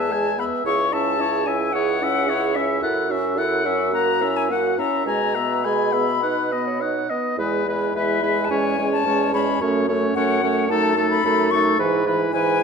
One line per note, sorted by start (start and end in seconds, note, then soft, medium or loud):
0.00 0.48 E2 soft
0.00 0.12 B3 soft
0.00 0.11 B4 soft
0.00 0.13 E5 soft
0.00 0.37 A5 medium
0.10 0.40 G#3 soft
0.10 0.40 G#4 soft
0.10 0.41 G#5 soft
0.38 0.64 B3 soft
0.38 0.65 B4 soft
0.38 0.65 E5 soft
0.38 0.44 B5 medium
0.65 2.79 C#2 soft
0.65 0.94 E4 soft
0.65 0.93 G#4 soft
0.65 0.95 C#5 soft
0.65 0.94 C#6 medium
0.92 1.22 C#4 soft
0.92 1.19 E4 soft
0.92 1.22 E5 soft
0.92 1.48 A5 medium
1.18 1.48 E4 soft
1.18 1.46 G#4 soft
1.18 1.49 C#5 soft
1.45 1.74 C#4 soft
1.45 1.72 E4 soft
1.45 1.74 E5 soft
1.45 1.74 G#5 medium
1.73 2.03 E4 soft
1.73 2.02 G#4 soft
1.73 2.05 C#5 soft
1.73 2.56 F#5 medium
2.00 2.30 C#4 soft
2.00 2.28 E4 soft
2.00 2.31 E5 soft
2.27 2.57 E4 soft
2.27 2.57 G#4 soft
2.27 2.58 C#5 soft
2.55 2.82 C#4 soft
2.55 2.82 E4 soft
2.55 2.82 E5 medium
2.55 2.82 E5 soft
2.82 4.74 F#2 medium
2.82 3.12 E4 soft
2.82 3.11 A4 soft
2.82 3.12 F#5 soft
3.09 3.39 C#4 soft
3.09 3.37 F#4 soft
3.09 3.40 E5 soft
3.36 3.67 E4 soft
3.36 3.66 A4 soft
3.36 3.89 F#5 medium
3.36 3.67 F#5 soft
3.65 3.92 C#4 soft
3.65 3.92 F#4 soft
3.65 3.93 E5 soft
3.93 4.23 A#3 soft
3.93 4.22 F#4 soft
3.93 4.23 F#5 soft
3.93 4.38 A#5 medium
4.21 4.51 C#4 soft
4.21 4.52 E4 soft
4.21 4.53 E5 soft
4.37 4.50 G#5 medium
4.50 4.80 A#3 soft
4.50 4.80 F#4 soft
4.50 4.78 F#5 medium
4.50 4.80 F#5 soft
4.78 5.06 C#4 soft
4.78 5.05 E4 soft
4.78 5.07 E5 soft
4.78 5.06 A#5 medium
5.06 7.05 B2 soft
5.06 5.38 G#3 soft
5.06 5.37 G#4 soft
5.06 5.37 G#5 soft
5.06 5.66 A#5 medium
5.35 5.67 B3 soft
5.35 5.64 B4 soft
5.35 5.66 E5 soft
5.64 5.95 G#3 soft
5.64 6.06 G#4 soft
5.64 5.94 G#5 soft
5.64 6.80 B5 medium
5.93 6.22 B3 soft
5.93 6.22 E5 soft
6.23 6.54 D#4 soft
6.23 6.65 B4 soft
6.23 6.53 F#5 soft
6.52 6.83 B3 soft
6.52 6.83 D#5 soft
6.66 7.09 C#5 soft
6.81 7.12 D#4 soft
6.81 7.11 F#5 soft
7.09 7.38 B3 soft
7.09 7.37 D#5 soft
7.09 7.38 D#5 soft
7.37 7.88 E2 medium
7.37 7.67 G#3 soft
7.37 7.66 E4 soft
7.37 7.66 B4 soft
7.66 7.95 G#3 soft
7.66 7.94 E4 soft
7.66 7.95 B4 soft
7.94 8.43 E2 medium
7.94 8.23 G#3 soft
7.94 8.22 E4 soft
7.94 8.22 B4 soft
7.94 8.46 E5 medium
8.23 8.50 G#3 soft
8.23 8.49 E4 soft
8.23 8.50 B4 soft
8.45 8.52 A5 soft
8.50 8.99 E2 medium
8.50 8.78 G#3 soft
8.50 8.77 C#4 soft
8.50 8.77 C#5 soft
8.50 8.92 G#5 medium
8.78 9.06 G#3 soft
8.78 9.05 C#4 soft
8.78 9.05 C#5 soft
8.93 9.33 A5 medium
9.05 9.54 E2 medium
9.05 9.33 G#3 soft
9.05 9.33 C#4 soft
9.05 9.33 C#5 soft
9.34 9.61 G#3 soft
9.34 9.61 C#4 soft
9.34 9.61 C#5 soft
9.34 9.61 B5 medium
9.61 10.09 F#2 medium
9.61 9.88 A3 soft
9.61 9.88 C#4 medium
9.61 9.88 C#5 medium
9.89 10.15 A3 soft
9.89 10.15 C#4 soft
9.89 10.15 C#5 soft
10.15 10.64 F#2 medium
10.15 10.42 A3 soft
10.15 10.43 C#4 medium
10.15 10.43 C#5 medium
10.15 10.65 F#5 medium
10.43 10.69 A3 soft
10.43 10.69 C#4 medium
10.43 10.70 C#5 soft
10.69 11.18 F#2 medium
10.69 10.97 A3 medium
10.69 10.96 D#4 medium
10.69 10.97 A4 medium
10.69 11.10 A5 medium
10.96 11.25 A3 soft
10.96 11.23 D#4 medium
10.96 11.24 A4 soft
11.10 11.52 B5 medium
11.24 11.72 F#2 medium
11.24 11.52 A3 medium
11.24 11.51 D#4 medium
11.24 11.52 A4 medium
11.51 11.79 A3 medium
11.51 11.78 D#4 medium
11.51 11.79 A4 soft
11.51 11.78 C#6 medium
11.79 12.27 G#2 medium
11.79 12.06 E3 medium
11.79 12.04 E4 medium
11.79 12.06 B4 medium
12.05 12.34 E3 soft
12.05 12.32 E4 medium
12.05 12.33 B4 medium
12.32 12.63 G#2 medium
12.32 12.61 E3 soft
12.32 12.60 E4 medium
12.32 12.61 B4 soft
12.32 12.63 G#5 medium
12.60 12.63 E4 soft